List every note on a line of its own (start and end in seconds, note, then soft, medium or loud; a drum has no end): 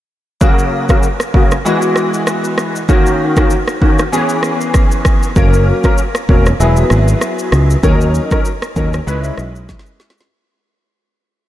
0.41 0.85 C#3 medium
0.41 0.85 F#3 medium
0.41 0.85 A#3 medium
0.41 0.85 F#4 loud
0.41 kick loud
0.41 shaker medium
0.59 shaker medium
0.89 1.04 C#3 medium
0.89 1.04 F#3 medium
0.89 1.04 A#3 medium
0.89 1.04 F#4 medium
0.89 kick medium
0.89 cross-stick medium
0.89 shaker soft
1.03 shaker medium
1.20 cross-stick medium
1.20 shaker medium
1.34 1.52 C#3 medium
1.34 1.52 F#3 medium
1.34 1.52 A#3 medium
1.34 1.52 F#4 medium
1.34 kick medium
1.51 cross-stick medium
1.51 shaker soft
1.65 2.80 E3 medium
1.65 2.80 G#3 medium
1.65 2.80 B3 medium
1.65 2.80 F#4 loud
1.65 shaker medium
1.82 shaker soft
1.96 cross-stick medium
1.96 shaker soft
2.14 shaker medium
2.27 cross-stick loud
2.27 shaker medium
2.44 shaker soft
2.58 cross-stick medium
2.58 shaker medium
2.76 shaker soft
2.89 3.33 D#3 medium
2.89 3.33 A#3 medium
2.89 3.33 C#4 medium
2.89 3.33 F#4 medium
2.89 kick loud
2.89 shaker medium
3.06 shaker medium
3.36 3.52 D#3 medium
3.36 3.52 A#3 medium
3.36 3.52 C#4 medium
3.36 3.52 F#4 medium
3.36 kick medium
3.36 cross-stick medium
3.36 shaker soft
3.50 shaker medium
3.68 cross-stick medium
3.68 shaker medium
3.81 3.99 D#3 medium
3.81 3.99 A#3 medium
3.81 4.00 C#4 medium
3.81 4.00 F#4 medium
3.81 kick medium
3.99 cross-stick medium
3.99 shaker soft
4.12 5.27 E3 medium
4.12 5.27 B3 medium
4.12 5.27 C#4 medium
4.12 5.27 G#4 loud
4.12 shaker medium
4.29 shaker medium
4.43 cross-stick medium
4.43 shaker soft
4.61 shaker medium
4.74 kick loud
4.74 cross-stick medium
4.74 shaker medium
4.91 shaker medium
5.05 kick medium
5.05 cross-stick loud
5.05 shaker medium
5.23 shaker soft
5.36 5.71 F#1 loud
5.36 5.80 F#3 medium
5.36 5.80 A#3 medium
5.36 5.80 C#4 medium
5.36 5.80 A#4 loud
5.36 kick loud
5.36 shaker medium
5.54 shaker medium
5.84 5.99 F#3 medium
5.84 5.99 A#3 medium
5.84 5.99 C#4 medium
5.84 5.99 A#4 medium
5.84 kick loud
5.84 cross-stick medium
5.84 shaker soft
5.98 shaker medium
6.15 cross-stick loud
6.15 shaker medium
6.29 6.51 E1 medium
6.29 6.47 F#3 medium
6.29 6.47 A#3 medium
6.29 6.47 C#4 medium
6.29 6.47 A#4 medium
6.29 kick medium
6.46 cross-stick medium
6.46 shaker soft
6.60 6.82 E1 medium
6.60 7.75 F#3 medium
6.60 7.75 B3 medium
6.60 7.75 E4 medium
6.60 7.75 G#4 loud
6.60 shaker medium
6.77 shaker soft
6.90 7.13 G#1 medium
6.90 cross-stick medium
6.90 shaker medium
7.08 shaker medium
7.21 cross-stick medium
7.21 shaker medium
7.39 shaker soft
7.52 7.75 C#2 medium
7.52 cross-stick medium
7.52 shaker medium
7.71 shaker soft
7.83 8.18 D#2 loud
7.83 8.27 F#3 medium
7.83 8.27 C#4 medium
7.83 8.27 D#4 medium
7.83 8.27 A#4 loud
7.83 kick loud
7.83 shaker medium
8.01 shaker medium
8.15 shaker medium
8.31 8.46 F#3 medium
8.31 8.46 C#4 medium
8.31 8.47 D#4 medium
8.31 8.47 A#4 medium
8.31 kick loud
8.31 cross-stick medium
8.31 shaker medium
8.45 shaker medium
8.62 cross-stick loud
8.62 shaker medium
8.76 8.99 D#2 medium
8.76 8.94 F#3 medium
8.76 8.94 C#4 medium
8.76 8.94 D#4 medium
8.76 8.94 A#4 medium
8.76 kick medium
8.76 shaker medium
8.93 cross-stick medium
8.93 shaker soft
9.07 9.30 C#2 loud
9.07 10.22 G#3 medium
9.07 10.22 C#4 medium
9.07 10.22 E4 medium
9.07 10.22 B4 loud
9.07 shaker medium
9.24 shaker soft
9.38 9.73 B1 medium
9.38 cross-stick medium
9.38 shaker soft
9.56 shaker medium
9.69 kick loud
9.69 snare medium
9.69 shaker medium
9.79 snare medium
9.86 shaker medium
10.00 snare medium
10.00 shaker medium
10.10 snare medium
10.18 snare medium
10.18 shaker soft